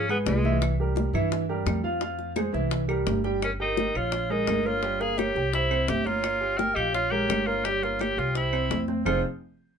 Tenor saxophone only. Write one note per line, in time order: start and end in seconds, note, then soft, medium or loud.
0.10 0.18 B3 medium
0.28 0.59 G#3 medium
3.44 3.51 C#4 medium
3.61 3.98 D#4 medium
3.97 4.32 F4 medium
4.31 4.68 D#4 medium
4.67 5.03 F4 medium
5.01 5.20 G#4 medium
5.18 5.53 G4 loud
5.54 5.91 E4 medium
5.89 6.08 G4 medium
6.07 6.59 F4 medium
6.58 6.77 A#4 loud
6.76 6.94 G4 medium
6.95 7.13 F4 loud
7.11 7.48 G4 loud
7.47 7.66 F4 medium
7.65 7.85 G4 loud
7.83 8.03 F4 medium
8.01 8.20 G4 medium
8.19 8.36 F4 medium
8.37 8.85 E4 medium
9.06 9.22 F4 medium